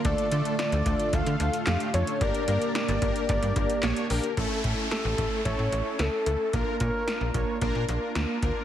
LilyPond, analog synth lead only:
\new Staff \with { instrumentName = "Analog synth lead" } { \time 4/4 \key a \phrygian \tempo 4 = 111 d''4 d''4 f''4 f''8 cis''8 | d''2 d''4. r8 | r4 a'4 cis''4 a'8 a'8 | bes'8 bes'4. r2 | }